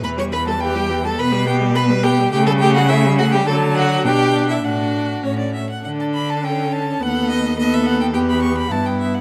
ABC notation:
X:1
M:2/4
L:1/16
Q:1/4=105
K:Edor
V:1 name="Violin"
b c' b a g3 a | [K:D] b2 g2 b2 g2 | g a g f e2 f g | a2 f2 g3 e |
f4 c d e f | f a b a g2 a2 | f2 ^d2 d e f g | g b c' b a g e f |]
V:2 name="Violin"
B c B A G3 A | [K:D] B2 G2 B2 G2 | G A G F E2 F G | A2 F2 G3 E |
F6 z2 | A8 | A4 A4 | G4 E4 |]
V:3 name="Viola" clef=bass
E, G, E, G, E, G, E, G, | [K:D] B, G, B, G, B, G, B, G, | A, G, A, G, A, G, A, G, | F,4 D4 |
D4 C3 z | D4 C4 | B,4 B,4 | B,4 B,4 |]
V:4 name="Cello" clef=bass
E,,8 | [K:D] B,,8 | C,8 | D,4 B,,4 |
A,,4 A,,2 z2 | D,8 | ^D,,8 | E,,4 G,,4 |]